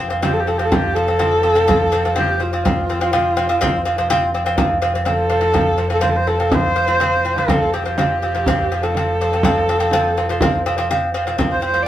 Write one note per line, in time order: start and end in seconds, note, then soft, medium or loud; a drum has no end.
0.00 3.62 F1 medium
0.10 0.20 F3 medium
0.10 0.20 C4 medium
0.10 frame drum soft
0.22 0.42 F3 medium
0.22 0.42 C4 loud
0.22 0.35 G4 medium
0.22 frame drum medium
0.33 0.42 A4 medium
0.40 0.49 G4 medium
0.47 0.57 F3 medium
0.47 0.57 C4 medium
0.47 0.59 A4 medium
0.47 frame drum soft
0.58 0.69 F3 medium
0.58 0.69 C4 medium
0.58 0.66 G4 medium
0.65 0.76 A4 medium
0.72 0.91 F3 medium
0.72 0.91 C4 medium
0.72 0.96 G4 medium
0.72 frame drum medium
0.94 1.06 F3 medium
0.94 1.06 C4 medium
0.94 2.16 A4 loud
1.08 1.18 F3 medium
1.08 1.18 C4 medium
1.08 frame drum soft
1.19 1.39 F3 medium
1.19 1.39 C4 loud
1.19 frame drum soft
1.43 1.53 F3 medium
1.43 1.53 C4 medium
1.55 1.65 F3 medium
1.55 1.66 C4 medium
1.68 1.87 F3 loud
1.68 1.87 C4 loud
1.68 frame drum medium
1.92 2.02 F3 medium
1.92 2.02 C4 medium
2.05 2.14 F3 medium
2.05 2.14 C4 medium
2.05 frame drum soft
2.16 2.36 F3 medium
2.16 2.35 C4 loud
2.16 2.45 G4 medium
2.16 frame drum medium
2.40 2.50 F3 medium
2.40 2.50 C4 medium
2.40 4.31 F4 medium
2.40 frame drum soft
2.53 2.63 F3 medium
2.53 2.63 C4 medium
2.65 2.84 F3 medium
2.65 2.84 C4 loud
2.65 frame drum medium
2.89 2.99 F3 medium
2.89 2.99 C4 medium
3.01 3.11 F3 medium
3.01 3.11 C4 medium
3.01 frame drum soft
3.13 3.32 F3 loud
3.13 3.32 C4 loud
3.13 frame drum soft
3.37 3.47 F3 medium
3.37 3.47 C4 medium
3.49 3.59 F3 medium
3.49 3.59 C4 medium
3.61 7.50 F1 medium
3.61 3.81 F3 loud
3.61 3.81 C4 loud
3.61 frame drum medium
3.85 3.96 F3 medium
3.85 3.95 C4 medium
3.98 4.08 F3 medium
3.98 4.08 C4 medium
3.98 frame drum soft
4.10 4.29 F3 loud
4.10 4.29 C4 loud
4.10 frame drum medium
4.34 4.44 F3 medium
4.34 4.44 C4 medium
4.34 frame drum soft
4.46 4.56 F3 medium
4.46 4.56 C4 medium
4.58 4.77 F3 loud
4.58 4.77 C4 loud
4.58 frame drum medium
4.82 4.92 F3 medium
4.82 4.92 C4 medium
4.94 5.04 F3 medium
4.94 5.05 C4 medium
4.94 frame drum soft
5.05 5.26 F3 medium
5.05 5.26 C4 medium
5.05 frame drum soft
5.10 5.89 A4 medium
5.30 5.40 F3 medium
5.30 5.39 C4 medium
5.41 5.52 F3 medium
5.41 5.52 C4 medium
5.54 5.74 F3 medium
5.54 5.74 C4 medium
5.54 frame drum medium
5.78 5.88 F3 medium
5.78 5.89 C4 medium
5.90 6.00 F3 medium
5.90 6.00 C4 medium
5.90 6.03 A4 medium
6.01 6.22 F3 medium
6.01 6.22 C4 loud
6.01 6.11 C5 medium
6.01 frame drum medium
6.10 6.18 A4 medium
6.16 6.29 C5 medium
6.27 6.37 F3 medium
6.27 6.37 C4 medium
6.27 6.55 A4 medium
6.27 frame drum soft
6.40 6.50 F3 medium
6.40 6.50 C4 medium
6.51 6.71 F3 medium
6.51 6.71 C4 medium
6.51 7.40 C5 medium
6.51 frame drum medium
6.76 6.86 F3 medium
6.76 6.86 C4 medium
6.88 6.98 F3 medium
6.88 6.98 C4 medium
6.88 frame drum soft
7.00 7.20 F3 medium
7.00 7.20 C4 loud
7.00 frame drum soft
7.25 7.35 F3 medium
7.25 7.35 C4 medium
7.36 7.47 F3 medium
7.36 7.47 C4 medium
7.36 7.75 A4 medium
7.36 frame drum soft
7.48 11.38 F1 medium
7.48 7.69 F3 medium
7.48 7.69 C4 loud
7.48 frame drum medium
7.73 7.83 F3 medium
7.73 7.83 C4 medium
7.73 7.86 G4 medium
7.85 7.95 F3 medium
7.85 7.95 C4 medium
7.85 8.84 G4 medium
7.85 frame drum soft
7.98 8.17 F3 medium
7.98 8.18 C4 loud
7.98 frame drum medium
8.22 8.32 F3 medium
8.22 8.32 C4 medium
8.22 frame drum soft
8.35 8.44 F3 medium
8.35 8.44 C4 medium
8.46 8.66 F3 medium
8.46 8.66 C4 loud
8.46 frame drum medium
8.72 8.81 F3 medium
8.72 8.81 C4 medium
8.83 8.93 F3 medium
8.83 8.93 C4 medium
8.83 10.80 A4 medium
8.83 frame drum soft
8.95 9.15 F3 medium
8.95 9.15 C4 medium
8.95 frame drum soft
9.21 9.30 F3 medium
9.21 9.30 C4 medium
9.33 9.42 F3 medium
9.33 9.42 C4 medium
9.43 9.63 F3 medium
9.43 9.64 C4 loud
9.43 frame drum medium
9.69 9.78 F3 medium
9.69 9.78 C4 medium
9.80 9.90 F3 medium
9.80 9.90 C4 medium
9.80 frame drum soft
9.91 10.12 F3 loud
9.91 10.12 C4 loud
9.91 frame drum medium
10.16 10.27 F3 medium
10.16 10.27 C4 medium
10.16 frame drum soft
10.29 10.39 F3 medium
10.29 10.39 C4 medium
10.41 10.61 F3 medium
10.41 10.61 C4 loud
10.41 frame drum medium
10.66 10.75 F3 medium
10.66 10.75 C4 medium
10.78 10.87 F3 medium
10.78 10.87 C4 medium
10.78 frame drum soft
10.90 11.09 F3 loud
10.90 11.09 C4 loud
10.90 frame drum soft
11.14 11.24 F3 medium
11.14 11.24 C4 medium
11.27 11.36 F3 medium
11.27 11.36 C4 medium
11.38 11.88 F1 medium
11.38 11.58 F3 medium
11.38 11.58 C4 loud
11.38 frame drum medium
11.52 11.62 C5 medium
11.62 11.72 F3 medium
11.62 11.72 C4 medium
11.62 11.84 C5 medium
11.74 11.84 F3 medium
11.74 11.84 C4 medium
11.74 frame drum soft
11.83 11.88 D5 medium